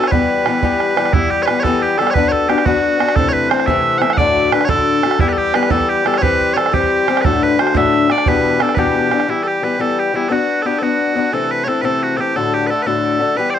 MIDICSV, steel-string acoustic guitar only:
0, 0, Header, 1, 2, 480
1, 0, Start_track
1, 0, Key_signature, 1, "minor"
1, 0, Tempo, 339943
1, 168, Time_signature, 6, 3, 24, 8
1, 19191, End_track
2, 0, Start_track
2, 0, Title_t, "Steel-string acoustic guitar"
2, 0, Program_c, 0, 25
2, 0, Note_on_c, 0, 59, 56
2, 0, Note_on_c, 0, 62, 60
2, 0, Note_on_c, 0, 66, 66
2, 0, Note_on_c, 0, 71, 62
2, 154, Note_off_c, 0, 59, 0
2, 160, Note_on_c, 0, 52, 53
2, 164, Note_off_c, 0, 62, 0
2, 168, Note_off_c, 0, 66, 0
2, 169, Note_on_c, 0, 55, 74
2, 174, Note_on_c, 0, 59, 74
2, 184, Note_off_c, 0, 71, 0
2, 189, Note_on_c, 0, 67, 77
2, 635, Note_off_c, 0, 52, 0
2, 648, Note_off_c, 0, 55, 0
2, 652, Note_on_c, 0, 52, 55
2, 663, Note_off_c, 0, 67, 0
2, 664, Note_on_c, 0, 55, 55
2, 671, Note_off_c, 0, 59, 0
2, 677, Note_on_c, 0, 59, 64
2, 688, Note_on_c, 0, 67, 62
2, 871, Note_off_c, 0, 52, 0
2, 874, Note_off_c, 0, 55, 0
2, 888, Note_on_c, 0, 52, 59
2, 889, Note_off_c, 0, 59, 0
2, 890, Note_off_c, 0, 67, 0
2, 891, Note_on_c, 0, 55, 72
2, 906, Note_on_c, 0, 59, 71
2, 907, Note_on_c, 0, 67, 84
2, 1344, Note_off_c, 0, 52, 0
2, 1351, Note_off_c, 0, 55, 0
2, 1361, Note_on_c, 0, 52, 56
2, 1368, Note_on_c, 0, 55, 64
2, 1378, Note_off_c, 0, 67, 0
2, 1379, Note_off_c, 0, 59, 0
2, 1385, Note_on_c, 0, 59, 67
2, 1394, Note_on_c, 0, 67, 69
2, 1576, Note_off_c, 0, 52, 0
2, 1593, Note_on_c, 0, 52, 68
2, 1595, Note_off_c, 0, 55, 0
2, 1604, Note_off_c, 0, 59, 0
2, 1604, Note_off_c, 0, 67, 0
2, 1612, Note_on_c, 0, 55, 67
2, 1621, Note_on_c, 0, 59, 68
2, 1621, Note_on_c, 0, 67, 70
2, 2071, Note_off_c, 0, 52, 0
2, 2085, Note_off_c, 0, 55, 0
2, 2088, Note_on_c, 0, 52, 57
2, 2096, Note_off_c, 0, 59, 0
2, 2097, Note_off_c, 0, 67, 0
2, 2101, Note_on_c, 0, 55, 58
2, 2126, Note_on_c, 0, 59, 61
2, 2127, Note_on_c, 0, 67, 66
2, 2312, Note_off_c, 0, 52, 0
2, 2320, Note_off_c, 0, 55, 0
2, 2329, Note_on_c, 0, 52, 76
2, 2335, Note_off_c, 0, 59, 0
2, 2337, Note_on_c, 0, 55, 66
2, 2341, Note_off_c, 0, 67, 0
2, 2352, Note_on_c, 0, 59, 80
2, 2359, Note_on_c, 0, 67, 79
2, 2795, Note_off_c, 0, 52, 0
2, 2812, Note_on_c, 0, 52, 56
2, 2814, Note_off_c, 0, 55, 0
2, 2821, Note_off_c, 0, 59, 0
2, 2824, Note_off_c, 0, 67, 0
2, 2831, Note_on_c, 0, 55, 66
2, 2839, Note_on_c, 0, 59, 56
2, 2851, Note_on_c, 0, 67, 63
2, 3025, Note_off_c, 0, 59, 0
2, 3036, Note_off_c, 0, 52, 0
2, 3041, Note_on_c, 0, 59, 61
2, 3046, Note_off_c, 0, 55, 0
2, 3051, Note_on_c, 0, 62, 61
2, 3059, Note_on_c, 0, 66, 64
2, 3062, Note_off_c, 0, 67, 0
2, 3067, Note_on_c, 0, 71, 67
2, 3493, Note_off_c, 0, 59, 0
2, 3510, Note_on_c, 0, 59, 60
2, 3511, Note_off_c, 0, 62, 0
2, 3520, Note_off_c, 0, 66, 0
2, 3528, Note_on_c, 0, 62, 62
2, 3533, Note_off_c, 0, 71, 0
2, 3536, Note_on_c, 0, 66, 67
2, 3550, Note_on_c, 0, 71, 56
2, 3727, Note_off_c, 0, 59, 0
2, 3744, Note_on_c, 0, 59, 61
2, 3745, Note_off_c, 0, 62, 0
2, 3754, Note_off_c, 0, 66, 0
2, 3762, Note_on_c, 0, 62, 64
2, 3763, Note_off_c, 0, 71, 0
2, 3771, Note_on_c, 0, 66, 73
2, 3780, Note_on_c, 0, 71, 69
2, 4206, Note_off_c, 0, 59, 0
2, 4223, Note_on_c, 0, 59, 49
2, 4225, Note_off_c, 0, 62, 0
2, 4235, Note_off_c, 0, 66, 0
2, 4242, Note_on_c, 0, 62, 55
2, 4248, Note_off_c, 0, 71, 0
2, 4252, Note_on_c, 0, 66, 56
2, 4265, Note_on_c, 0, 71, 61
2, 4466, Note_off_c, 0, 59, 0
2, 4472, Note_on_c, 0, 48, 63
2, 4475, Note_off_c, 0, 62, 0
2, 4478, Note_on_c, 0, 52, 52
2, 4480, Note_off_c, 0, 66, 0
2, 4486, Note_on_c, 0, 60, 58
2, 4487, Note_off_c, 0, 71, 0
2, 4493, Note_on_c, 0, 57, 73
2, 4499, Note_on_c, 0, 64, 73
2, 4924, Note_off_c, 0, 52, 0
2, 4940, Note_on_c, 0, 52, 59
2, 4944, Note_off_c, 0, 60, 0
2, 4957, Note_off_c, 0, 57, 0
2, 4958, Note_off_c, 0, 48, 0
2, 4961, Note_on_c, 0, 60, 69
2, 4971, Note_off_c, 0, 64, 0
2, 4973, Note_on_c, 0, 57, 61
2, 4988, Note_on_c, 0, 64, 63
2, 5183, Note_off_c, 0, 52, 0
2, 5193, Note_off_c, 0, 60, 0
2, 5193, Note_on_c, 0, 48, 69
2, 5200, Note_off_c, 0, 57, 0
2, 5200, Note_on_c, 0, 52, 77
2, 5202, Note_off_c, 0, 64, 0
2, 5211, Note_on_c, 0, 60, 68
2, 5219, Note_on_c, 0, 57, 70
2, 5219, Note_on_c, 0, 64, 68
2, 5640, Note_off_c, 0, 52, 0
2, 5657, Note_on_c, 0, 52, 63
2, 5662, Note_off_c, 0, 60, 0
2, 5669, Note_off_c, 0, 57, 0
2, 5677, Note_off_c, 0, 48, 0
2, 5679, Note_on_c, 0, 60, 58
2, 5685, Note_off_c, 0, 64, 0
2, 5686, Note_on_c, 0, 57, 66
2, 5702, Note_on_c, 0, 64, 60
2, 5900, Note_off_c, 0, 52, 0
2, 5905, Note_off_c, 0, 57, 0
2, 5909, Note_on_c, 0, 38, 71
2, 5911, Note_on_c, 0, 45, 57
2, 5912, Note_off_c, 0, 60, 0
2, 5916, Note_on_c, 0, 50, 78
2, 5922, Note_on_c, 0, 57, 70
2, 5923, Note_off_c, 0, 64, 0
2, 5923, Note_on_c, 0, 62, 73
2, 5932, Note_on_c, 0, 66, 77
2, 6359, Note_off_c, 0, 50, 0
2, 6372, Note_off_c, 0, 57, 0
2, 6376, Note_on_c, 0, 50, 50
2, 6388, Note_off_c, 0, 62, 0
2, 6389, Note_on_c, 0, 57, 58
2, 6394, Note_off_c, 0, 38, 0
2, 6395, Note_off_c, 0, 45, 0
2, 6395, Note_off_c, 0, 66, 0
2, 6405, Note_on_c, 0, 62, 61
2, 6412, Note_on_c, 0, 66, 58
2, 6604, Note_on_c, 0, 38, 57
2, 6606, Note_off_c, 0, 50, 0
2, 6609, Note_off_c, 0, 57, 0
2, 6618, Note_off_c, 0, 62, 0
2, 6619, Note_off_c, 0, 66, 0
2, 6619, Note_on_c, 0, 45, 61
2, 6623, Note_on_c, 0, 50, 70
2, 6626, Note_on_c, 0, 57, 61
2, 6635, Note_on_c, 0, 62, 67
2, 6636, Note_on_c, 0, 66, 62
2, 7081, Note_off_c, 0, 50, 0
2, 7098, Note_off_c, 0, 57, 0
2, 7098, Note_on_c, 0, 50, 57
2, 7101, Note_off_c, 0, 38, 0
2, 7109, Note_off_c, 0, 45, 0
2, 7109, Note_off_c, 0, 62, 0
2, 7115, Note_on_c, 0, 57, 54
2, 7117, Note_off_c, 0, 66, 0
2, 7126, Note_on_c, 0, 62, 58
2, 7138, Note_on_c, 0, 66, 61
2, 7336, Note_off_c, 0, 50, 0
2, 7342, Note_on_c, 0, 52, 56
2, 7343, Note_off_c, 0, 57, 0
2, 7348, Note_on_c, 0, 55, 56
2, 7353, Note_off_c, 0, 62, 0
2, 7359, Note_off_c, 0, 66, 0
2, 7364, Note_on_c, 0, 59, 72
2, 7374, Note_on_c, 0, 67, 68
2, 7810, Note_off_c, 0, 52, 0
2, 7815, Note_off_c, 0, 55, 0
2, 7827, Note_on_c, 0, 52, 56
2, 7831, Note_off_c, 0, 59, 0
2, 7832, Note_on_c, 0, 55, 65
2, 7845, Note_off_c, 0, 67, 0
2, 7848, Note_on_c, 0, 59, 68
2, 7861, Note_on_c, 0, 67, 66
2, 8038, Note_off_c, 0, 52, 0
2, 8049, Note_off_c, 0, 55, 0
2, 8055, Note_on_c, 0, 52, 68
2, 8059, Note_off_c, 0, 59, 0
2, 8065, Note_off_c, 0, 67, 0
2, 8066, Note_on_c, 0, 55, 70
2, 8076, Note_on_c, 0, 59, 70
2, 8081, Note_on_c, 0, 67, 72
2, 8517, Note_off_c, 0, 52, 0
2, 8534, Note_on_c, 0, 52, 53
2, 8535, Note_off_c, 0, 55, 0
2, 8546, Note_off_c, 0, 59, 0
2, 8552, Note_on_c, 0, 55, 58
2, 8559, Note_off_c, 0, 67, 0
2, 8563, Note_on_c, 0, 59, 55
2, 8574, Note_on_c, 0, 67, 68
2, 8752, Note_off_c, 0, 52, 0
2, 8765, Note_off_c, 0, 55, 0
2, 8769, Note_on_c, 0, 52, 74
2, 8776, Note_off_c, 0, 67, 0
2, 8782, Note_on_c, 0, 55, 55
2, 8785, Note_off_c, 0, 59, 0
2, 8791, Note_on_c, 0, 60, 61
2, 8793, Note_on_c, 0, 67, 70
2, 9243, Note_off_c, 0, 52, 0
2, 9257, Note_off_c, 0, 55, 0
2, 9260, Note_on_c, 0, 52, 56
2, 9273, Note_off_c, 0, 60, 0
2, 9274, Note_off_c, 0, 67, 0
2, 9274, Note_on_c, 0, 55, 64
2, 9293, Note_on_c, 0, 60, 61
2, 9302, Note_on_c, 0, 67, 69
2, 9468, Note_off_c, 0, 52, 0
2, 9481, Note_off_c, 0, 55, 0
2, 9485, Note_on_c, 0, 52, 66
2, 9493, Note_off_c, 0, 67, 0
2, 9497, Note_off_c, 0, 60, 0
2, 9498, Note_on_c, 0, 55, 66
2, 9510, Note_on_c, 0, 67, 83
2, 9514, Note_on_c, 0, 60, 62
2, 9969, Note_off_c, 0, 52, 0
2, 9979, Note_off_c, 0, 55, 0
2, 9986, Note_on_c, 0, 52, 55
2, 9993, Note_off_c, 0, 67, 0
2, 9994, Note_off_c, 0, 60, 0
2, 9996, Note_on_c, 0, 55, 57
2, 10015, Note_on_c, 0, 60, 66
2, 10021, Note_on_c, 0, 67, 59
2, 10221, Note_on_c, 0, 38, 59
2, 10222, Note_off_c, 0, 52, 0
2, 10227, Note_off_c, 0, 55, 0
2, 10236, Note_off_c, 0, 60, 0
2, 10236, Note_on_c, 0, 45, 59
2, 10240, Note_off_c, 0, 67, 0
2, 10243, Note_on_c, 0, 50, 65
2, 10248, Note_on_c, 0, 57, 65
2, 10249, Note_on_c, 0, 62, 67
2, 10249, Note_on_c, 0, 66, 63
2, 10692, Note_off_c, 0, 50, 0
2, 10708, Note_off_c, 0, 38, 0
2, 10708, Note_on_c, 0, 50, 64
2, 10710, Note_off_c, 0, 57, 0
2, 10716, Note_off_c, 0, 45, 0
2, 10717, Note_off_c, 0, 62, 0
2, 10722, Note_off_c, 0, 66, 0
2, 10727, Note_on_c, 0, 57, 67
2, 10734, Note_on_c, 0, 62, 70
2, 10746, Note_on_c, 0, 66, 74
2, 10938, Note_on_c, 0, 38, 67
2, 10940, Note_off_c, 0, 57, 0
2, 10944, Note_off_c, 0, 50, 0
2, 10950, Note_off_c, 0, 62, 0
2, 10952, Note_on_c, 0, 45, 79
2, 10955, Note_off_c, 0, 66, 0
2, 10957, Note_on_c, 0, 57, 88
2, 10958, Note_on_c, 0, 50, 70
2, 10967, Note_on_c, 0, 62, 67
2, 10972, Note_on_c, 0, 66, 78
2, 11416, Note_off_c, 0, 50, 0
2, 11427, Note_off_c, 0, 38, 0
2, 11428, Note_off_c, 0, 57, 0
2, 11433, Note_on_c, 0, 50, 55
2, 11434, Note_off_c, 0, 45, 0
2, 11442, Note_off_c, 0, 62, 0
2, 11444, Note_off_c, 0, 66, 0
2, 11445, Note_on_c, 0, 57, 62
2, 11460, Note_on_c, 0, 62, 63
2, 11466, Note_on_c, 0, 66, 62
2, 11661, Note_on_c, 0, 40, 64
2, 11666, Note_off_c, 0, 50, 0
2, 11670, Note_on_c, 0, 47, 74
2, 11672, Note_off_c, 0, 57, 0
2, 11672, Note_off_c, 0, 62, 0
2, 11675, Note_on_c, 0, 52, 58
2, 11683, Note_off_c, 0, 66, 0
2, 11685, Note_on_c, 0, 59, 67
2, 11689, Note_on_c, 0, 62, 74
2, 11692, Note_on_c, 0, 67, 62
2, 12130, Note_off_c, 0, 52, 0
2, 12147, Note_on_c, 0, 52, 55
2, 12149, Note_off_c, 0, 40, 0
2, 12153, Note_off_c, 0, 62, 0
2, 12154, Note_off_c, 0, 47, 0
2, 12155, Note_off_c, 0, 59, 0
2, 12161, Note_on_c, 0, 59, 67
2, 12165, Note_off_c, 0, 67, 0
2, 12170, Note_on_c, 0, 62, 59
2, 12191, Note_on_c, 0, 67, 70
2, 12382, Note_off_c, 0, 59, 0
2, 12384, Note_off_c, 0, 52, 0
2, 12384, Note_on_c, 0, 40, 59
2, 12386, Note_off_c, 0, 62, 0
2, 12388, Note_off_c, 0, 67, 0
2, 12390, Note_on_c, 0, 47, 73
2, 12399, Note_on_c, 0, 59, 75
2, 12400, Note_on_c, 0, 52, 72
2, 12403, Note_on_c, 0, 62, 69
2, 12405, Note_on_c, 0, 67, 71
2, 12853, Note_off_c, 0, 52, 0
2, 12870, Note_on_c, 0, 52, 57
2, 12872, Note_off_c, 0, 40, 0
2, 12875, Note_off_c, 0, 47, 0
2, 12881, Note_off_c, 0, 59, 0
2, 12881, Note_off_c, 0, 62, 0
2, 12883, Note_off_c, 0, 67, 0
2, 12887, Note_on_c, 0, 59, 53
2, 12901, Note_on_c, 0, 62, 60
2, 12907, Note_on_c, 0, 67, 56
2, 13091, Note_off_c, 0, 52, 0
2, 13103, Note_off_c, 0, 59, 0
2, 13108, Note_on_c, 0, 52, 50
2, 13109, Note_on_c, 0, 55, 58
2, 13115, Note_off_c, 0, 62, 0
2, 13116, Note_off_c, 0, 67, 0
2, 13120, Note_on_c, 0, 59, 49
2, 13133, Note_on_c, 0, 67, 56
2, 13570, Note_off_c, 0, 52, 0
2, 13582, Note_off_c, 0, 55, 0
2, 13587, Note_on_c, 0, 52, 47
2, 13591, Note_off_c, 0, 59, 0
2, 13599, Note_on_c, 0, 55, 60
2, 13607, Note_off_c, 0, 67, 0
2, 13607, Note_on_c, 0, 59, 54
2, 13623, Note_on_c, 0, 67, 62
2, 13803, Note_off_c, 0, 52, 0
2, 13815, Note_off_c, 0, 55, 0
2, 13820, Note_on_c, 0, 52, 47
2, 13823, Note_off_c, 0, 59, 0
2, 13826, Note_off_c, 0, 67, 0
2, 13832, Note_on_c, 0, 55, 64
2, 13840, Note_on_c, 0, 59, 58
2, 13843, Note_on_c, 0, 67, 68
2, 14294, Note_off_c, 0, 52, 0
2, 14302, Note_off_c, 0, 55, 0
2, 14311, Note_on_c, 0, 52, 56
2, 14319, Note_on_c, 0, 55, 50
2, 14322, Note_off_c, 0, 59, 0
2, 14324, Note_off_c, 0, 67, 0
2, 14340, Note_on_c, 0, 59, 52
2, 14352, Note_on_c, 0, 67, 56
2, 14525, Note_off_c, 0, 59, 0
2, 14536, Note_off_c, 0, 52, 0
2, 14542, Note_on_c, 0, 59, 61
2, 14550, Note_off_c, 0, 55, 0
2, 14555, Note_on_c, 0, 62, 53
2, 14560, Note_off_c, 0, 67, 0
2, 14561, Note_on_c, 0, 66, 63
2, 14566, Note_on_c, 0, 71, 68
2, 15020, Note_off_c, 0, 59, 0
2, 15032, Note_off_c, 0, 62, 0
2, 15037, Note_on_c, 0, 59, 52
2, 15039, Note_off_c, 0, 66, 0
2, 15046, Note_off_c, 0, 71, 0
2, 15049, Note_on_c, 0, 62, 53
2, 15056, Note_on_c, 0, 66, 57
2, 15075, Note_on_c, 0, 71, 50
2, 15257, Note_off_c, 0, 59, 0
2, 15266, Note_off_c, 0, 62, 0
2, 15274, Note_on_c, 0, 59, 59
2, 15275, Note_off_c, 0, 66, 0
2, 15283, Note_on_c, 0, 62, 64
2, 15285, Note_off_c, 0, 71, 0
2, 15292, Note_on_c, 0, 66, 60
2, 15302, Note_on_c, 0, 71, 56
2, 15729, Note_off_c, 0, 59, 0
2, 15746, Note_on_c, 0, 59, 49
2, 15747, Note_off_c, 0, 62, 0
2, 15764, Note_off_c, 0, 71, 0
2, 15764, Note_on_c, 0, 62, 56
2, 15765, Note_off_c, 0, 66, 0
2, 15781, Note_on_c, 0, 71, 57
2, 15782, Note_on_c, 0, 66, 51
2, 15988, Note_off_c, 0, 59, 0
2, 15990, Note_on_c, 0, 48, 54
2, 15993, Note_off_c, 0, 62, 0
2, 15993, Note_on_c, 0, 52, 56
2, 15998, Note_on_c, 0, 60, 60
2, 16007, Note_off_c, 0, 66, 0
2, 16007, Note_off_c, 0, 71, 0
2, 16013, Note_on_c, 0, 57, 59
2, 16016, Note_on_c, 0, 64, 54
2, 16447, Note_off_c, 0, 52, 0
2, 16461, Note_off_c, 0, 60, 0
2, 16464, Note_on_c, 0, 52, 51
2, 16473, Note_off_c, 0, 57, 0
2, 16477, Note_on_c, 0, 60, 59
2, 16481, Note_off_c, 0, 48, 0
2, 16490, Note_off_c, 0, 64, 0
2, 16490, Note_on_c, 0, 57, 63
2, 16507, Note_on_c, 0, 64, 62
2, 16690, Note_off_c, 0, 52, 0
2, 16698, Note_on_c, 0, 48, 57
2, 16703, Note_off_c, 0, 60, 0
2, 16704, Note_off_c, 0, 57, 0
2, 16707, Note_on_c, 0, 52, 60
2, 16708, Note_off_c, 0, 64, 0
2, 16720, Note_on_c, 0, 60, 55
2, 16721, Note_on_c, 0, 57, 67
2, 16725, Note_on_c, 0, 64, 72
2, 17180, Note_off_c, 0, 52, 0
2, 17193, Note_off_c, 0, 60, 0
2, 17196, Note_off_c, 0, 48, 0
2, 17197, Note_on_c, 0, 52, 46
2, 17202, Note_off_c, 0, 57, 0
2, 17209, Note_off_c, 0, 64, 0
2, 17210, Note_on_c, 0, 60, 47
2, 17219, Note_on_c, 0, 57, 53
2, 17239, Note_on_c, 0, 64, 48
2, 17437, Note_off_c, 0, 52, 0
2, 17443, Note_off_c, 0, 60, 0
2, 17444, Note_off_c, 0, 57, 0
2, 17447, Note_on_c, 0, 38, 52
2, 17450, Note_on_c, 0, 45, 65
2, 17455, Note_on_c, 0, 50, 61
2, 17457, Note_off_c, 0, 64, 0
2, 17461, Note_on_c, 0, 57, 50
2, 17468, Note_on_c, 0, 62, 53
2, 17470, Note_on_c, 0, 66, 52
2, 17923, Note_off_c, 0, 50, 0
2, 17931, Note_off_c, 0, 38, 0
2, 17932, Note_off_c, 0, 45, 0
2, 17937, Note_off_c, 0, 57, 0
2, 17940, Note_on_c, 0, 50, 51
2, 17941, Note_off_c, 0, 62, 0
2, 17942, Note_off_c, 0, 66, 0
2, 17958, Note_on_c, 0, 57, 44
2, 17966, Note_on_c, 0, 62, 65
2, 17976, Note_on_c, 0, 66, 67
2, 18142, Note_off_c, 0, 50, 0
2, 18148, Note_on_c, 0, 38, 50
2, 18151, Note_off_c, 0, 57, 0
2, 18156, Note_on_c, 0, 45, 58
2, 18159, Note_on_c, 0, 50, 48
2, 18160, Note_off_c, 0, 62, 0
2, 18160, Note_off_c, 0, 66, 0
2, 18168, Note_on_c, 0, 57, 64
2, 18177, Note_on_c, 0, 62, 57
2, 18177, Note_on_c, 0, 66, 65
2, 18614, Note_off_c, 0, 50, 0
2, 18631, Note_off_c, 0, 57, 0
2, 18631, Note_on_c, 0, 50, 49
2, 18640, Note_off_c, 0, 62, 0
2, 18641, Note_off_c, 0, 38, 0
2, 18645, Note_off_c, 0, 45, 0
2, 18648, Note_on_c, 0, 57, 47
2, 18656, Note_off_c, 0, 66, 0
2, 18657, Note_on_c, 0, 62, 57
2, 18672, Note_on_c, 0, 66, 52
2, 18874, Note_off_c, 0, 50, 0
2, 18881, Note_on_c, 0, 52, 53
2, 18882, Note_off_c, 0, 57, 0
2, 18887, Note_off_c, 0, 62, 0
2, 18894, Note_off_c, 0, 66, 0
2, 18894, Note_on_c, 0, 55, 61
2, 18901, Note_on_c, 0, 59, 64
2, 18906, Note_on_c, 0, 67, 63
2, 19191, Note_off_c, 0, 52, 0
2, 19191, Note_off_c, 0, 55, 0
2, 19191, Note_off_c, 0, 59, 0
2, 19191, Note_off_c, 0, 67, 0
2, 19191, End_track
0, 0, End_of_file